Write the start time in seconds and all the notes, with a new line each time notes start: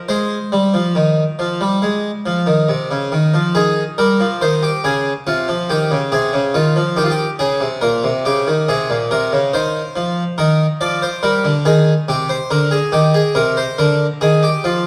0.09 G#3 C5
0.52 G3
0.74 F3
0.95 D#3
1.39 F3
1.61 G3
1.82 G#3
2.26 F3
2.47 D#3
2.69 C3
2.91 C#3
3.12 D#3
3.34 F3
3.55 D#3 G#4
3.98 G3 A#4
4.20 F3
4.41 D#3 C5
4.63 G4
4.84 C#3 G#4
5.27 C3 F4
5.48 F3
5.69 D#3 G4
5.91 C#3
6.12 C3 G#4
6.33 C#3
6.54 D#3 F4
6.76 F3
6.96 D#3 G4
7.04 F4
7.10 G4
7.39 C#3 G#4
7.61 C3
7.81 A#2 A#4
8.04 C3
8.25 C#3 G4
8.47 D#3
8.68 C3 G#4
8.90 A#2
9.11 C3 A#4
9.32 C#3
9.54 D#3 C5
9.96 F3
10.38 D#3 A#4
10.81 F3 D5
11.02 C5
11.23 G3 A#4
11.44 D3
11.65 D#3 G#4
12.08 C3 G4
12.29 C5
12.50 D3 A#4
12.71 G#4
12.92 D#3 G4
13.14 G#4
13.35 C3 A#4
13.57 C5
13.78 D3 A#4
14.21 D#3 G#4
14.43 G4
14.64 F3 F4